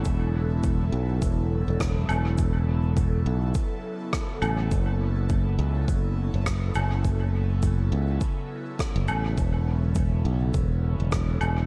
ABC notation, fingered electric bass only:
X:1
M:4/4
L:1/16
Q:"Swing 16ths" 1/4=103
K:Emix
V:1 name="Fingered electric bass" clef=bass
E,,,6 B,,,2 E,,,3 E,,,3 E,,,2- | E,,,6 B,,,2 z6 A,,,2 | F,,,6 C,,2 F,,,3 F,,,3 F,,,2- | F,,,6 C,,2 z4 z F,,, A,,,2 |
E,,,6 B,,,2 E,,,3 E,,,3 E,,,2 |]